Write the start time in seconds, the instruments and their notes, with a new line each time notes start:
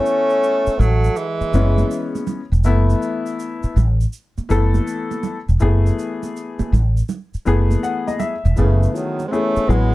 Already playing: upright piano E3 A3 B3 A4, tenor saxophone A3, trombone C#4
0.06 shaker
0.30 shaker
0.43 shaker
0.67 muted fretless electric bass stroke, shaker
0.79 fretless electric bass A1, tenor saxophone F#3, trombone A3, low conga, shaker
1.04 shaker
1.16 tenor saxophone E3, trombone G#3, shaker
1.40 muted fretless electric bass stroke, high conga, shaker
1.53 fretless electric bass F#1, upright piano E3 G#3 B3 C#4, shaker
1.78 high conga, shaker
1.91 shaker
2.15 high conga, shaker
2.27 low conga, shaker
2.52 fretless electric bass E1, shaker
2.64 fretless electric bass F#1, upright piano E3 A3 B3 E4, shaker
2.90 shaker
3.02 shaker
3.26 shaker
3.40 shaker
3.63 muted fretless electric bass stroke, shaker
3.76 fretless electric bass A1, low conga, shaker
4.01 shaker
4.13 shaker
4.38 muted fretless electric bass stroke, high conga, shaker
4.49 fretless electric bass F#1, upright piano E3 A3 B3 A4, shaker
4.74 high conga, shaker
4.87 shaker
5.11 high conga, shaker
5.23 low conga, shaker
5.48 fretless electric bass E1, shaker
5.60 fretless electric bass F#1, upright piano E3 A3 B3 G#4, shaker
5.86 shaker
5.99 shaker
6.23 high conga, shaker
6.36 shaker
6.59 muted fretless electric bass stroke, high conga, shaker
6.72 fretless electric bass A1, low conga, shaker
6.97 shaker
7.09 low conga, shaker
7.34 muted fretless electric bass stroke, shaker
7.45 fretless electric bass F#1, upright piano E3 A3 B3 G#4, shaker
7.71 high conga, shaker
7.83 upright piano F#5, shaker
8.07 upright piano D#5, high conga, shaker
8.19 upright piano E5, low conga, shaker
8.45 fretless electric bass E1, shaker
8.56 fretless electric bass F#1, tenor saxophone C#3, upright piano E3 A3 B3 G#4, trombone E3, shaker
8.83 shaker
8.95 tenor saxophone D#3, trombone F#3, shaker
9.19 high conga, shaker
9.27 upright piano E3, tenor saxophone G#3, trombone C4
9.31 upright piano A3 B3 G#4, tenor saxophone A3, trombone C#4, shaker
9.56 muted fretless electric bass stroke, shaker
9.68 fretless electric bass A1, upright piano E3 F#3 B3 G#4, tenor saxophone G#3, trombone B3, low conga, shaker